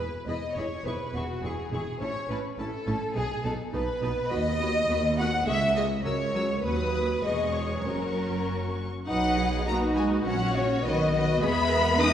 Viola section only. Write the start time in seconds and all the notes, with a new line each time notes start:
0.28 E4 G#4
0.57 E4 G#4
0.86 E4 G#4
1.15 E4 G#4
1.45 E4 G#4
1.73 E4 G#4
2.01 C#4 E4
2.30 C#4 E4
2.59 C#4 E4
2.87 C#4 E4
3.16 B3 D#4
3.45 B3 D#4
3.73 B3 D#4
4.01 B3 D#4
4.30 B3 F#4
4.60 B3 F#4
4.89 B3 F#4
5.18 B3 F#4
5.47 G#3 G#4
5.77 G#3 G#4
6.05 F#3 A#4
6.35 F#3 A#4
6.64 F#3 B4
7.24 G#3 G#4
7.86 C#4 F#4
9.07 D#4
9.37 G#4
9.66 D#4 F#4
10.26 C#4 F#4
10.85 B3 F#4
11.42 G#3 G#4
11.72 A#4
12.01 G#3 B4